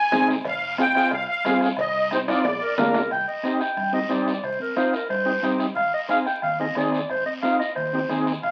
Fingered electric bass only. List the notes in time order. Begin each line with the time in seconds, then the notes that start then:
0.12 G1
0.45 F1
1.12 C2
1.44 G2
1.77 C2
2.45 A#1
2.78 D2
2.95 C2
3.11 C2
3.77 G2
4.10 G2
4.43 C2
5.10 G2
5.43 G2
5.76 G#1
6.42 D#2
6.76 D#2
7.09 G#1
7.76 D#2
8.10 D#2
8.43 A#1